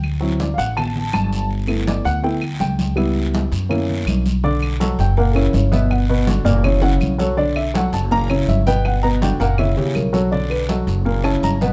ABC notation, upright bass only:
X:1
M:4/4
L:1/8
Q:1/4=163
K:F#phr
V:1 name="Upright bass" clef=bass
D,,3 A,,,3 G,,,2- | G,,,3 D,,3 C,,2- | C,,3 F,,3 B,,,2- | [K:Bm] B,,,3 F,,,3 G,,,2- |
G,,,3 F,,,3 B,,,2- | B,,,3 F,,,3 G,,,2- | G,,,3 F,,,2 ^A,,, B,,,2- | B,,,3 F,,,3 G,,,2 |]